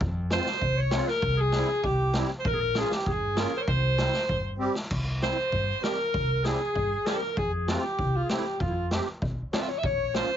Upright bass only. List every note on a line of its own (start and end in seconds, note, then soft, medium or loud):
0.01 0.37 F2 loud
0.62 0.98 C2 medium
1.22 1.59 C2 loud
1.83 2.20 C2 loud
2.45 2.82 A#1 loud
3.06 3.43 G2 medium
3.68 4.05 C2 loud
4.29 4.66 G2 medium
4.91 5.28 C2 medium
5.53 5.71 G2 medium
6.15 6.51 C2 loud
6.76 6.94 G2 medium
7.37 7.75 F2 loud
7.98 8.17 C2 medium
8.60 8.98 F2 loud
9.22 9.41 B1 medium
9.83 10.21 A#1 medium